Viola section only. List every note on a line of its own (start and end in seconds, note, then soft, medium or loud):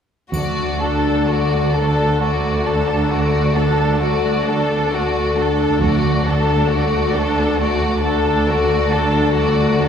0.34 0.78 A3 soft
0.82 1.29 D4 soft
1.29 1.76 A3 soft
1.75 2.21 D4 soft
2.22 2.63 A3 soft
2.66 3.10 D4 soft
3.11 3.55 A3 soft
3.56 4.01 D4 soft
4.01 4.44 A3 soft
4.47 4.92 D4 soft
4.93 5.37 A3 soft
5.37 5.81 D4 soft
5.82 6.23 A3 soft
6.26 6.70 D4 soft
6.70 7.15 A3 soft
7.16 7.60 D4 soft
7.60 8.02 A3 soft
8.06 8.49 D4 soft
8.50 8.93 A3 soft
8.93 9.37 D4 soft
9.37 9.78 A3 soft
9.81 9.88 D4 soft